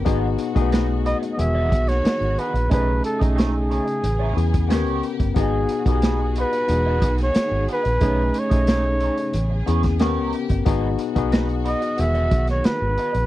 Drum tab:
HH |x-xxx-xxx-xxxxxx|x-xxx-xxx-xxxxxx|x-xxx-xxx-xxx-xx|x-xxx-xxx-xxx-xx|
SD |----o------oo---|----o-------o---|----o------oo---|----o------oo---|
BD |o--o------o-----|o--o-------o---o|o--o------o-----|o--o-------o---o|

HH |x-xxxxxxxxxxx-xx|
SD |----o------oo---|
BD |o--o------o-----|